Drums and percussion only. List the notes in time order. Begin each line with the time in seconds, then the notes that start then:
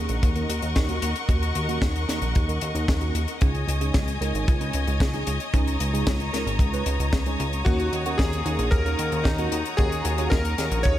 0.09 closed hi-hat
0.23 kick, closed hi-hat
0.36 closed hi-hat
0.50 closed hi-hat
0.62 closed hi-hat
0.76 kick, snare, closed hi-hat
0.89 closed hi-hat
1.02 closed hi-hat
1.16 closed hi-hat
1.29 kick, closed hi-hat
1.43 closed hi-hat
1.55 closed hi-hat
1.69 closed hi-hat
1.82 kick, snare, closed hi-hat
1.96 closed hi-hat
2.09 snare, closed hi-hat
2.22 closed hi-hat
2.35 kick, closed hi-hat
2.49 closed hi-hat
2.61 closed hi-hat
2.75 closed hi-hat
2.88 kick, snare, closed hi-hat
3.01 closed hi-hat
3.15 closed hi-hat
3.28 closed hi-hat
3.41 kick, closed hi-hat
3.55 closed hi-hat
3.68 closed hi-hat
3.81 closed hi-hat
3.94 kick, snare, closed hi-hat
4.08 closed hi-hat
4.22 closed hi-hat
4.35 closed hi-hat
4.48 kick, closed hi-hat
4.61 closed hi-hat
4.73 closed hi-hat
4.87 closed hi-hat
5.00 kick, snare, closed hi-hat
5.14 closed hi-hat
5.27 closed hi-hat
5.40 closed hi-hat
5.54 kick, closed hi-hat
5.67 closed hi-hat
5.80 closed hi-hat
5.95 closed hi-hat
6.07 kick, snare, closed hi-hat
6.20 closed hi-hat
6.34 snare, closed hi-hat
6.47 closed hi-hat
6.59 kick, closed hi-hat
6.74 closed hi-hat
6.86 closed hi-hat
7.00 closed hi-hat
7.13 kick, snare, closed hi-hat
7.26 closed hi-hat
7.40 closed hi-hat
7.53 closed hi-hat
7.66 kick, closed hi-hat
7.80 closed hi-hat
7.93 closed hi-hat
8.06 closed hi-hat
8.19 kick, snare, closed hi-hat
8.33 closed hi-hat
8.46 closed hi-hat
8.59 closed hi-hat
8.72 kick, closed hi-hat
8.86 closed hi-hat
8.99 closed hi-hat
9.12 closed hi-hat
9.25 kick, snare, closed hi-hat
9.38 closed hi-hat
9.52 closed hi-hat
9.66 closed hi-hat
9.78 kick, closed hi-hat
9.92 closed hi-hat
10.05 closed hi-hat
10.18 closed hi-hat
10.32 kick, snare, closed hi-hat
10.45 closed hi-hat
10.58 snare, closed hi-hat
10.71 closed hi-hat
10.84 kick, closed hi-hat